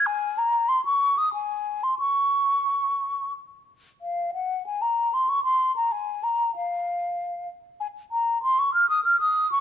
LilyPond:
\new Staff \with { instrumentName = "Flute" } { \time 3/4 \key aes \mixolydian \tempo 4 = 95 aes''8 bes''8 c'''16 des'''8 ees'''16 aes''8. c'''16 | des'''2 r4 | \key bes \minor f''8 ges''8 aes''16 bes''8 c'''16 des'''16 c'''8 bes''16 | aes''8 bes''8 f''4. r8 |
aes''8 bes''8 c'''16 des'''16 f'''16 ees'''16 f'''16 ees'''8 des'''16 | }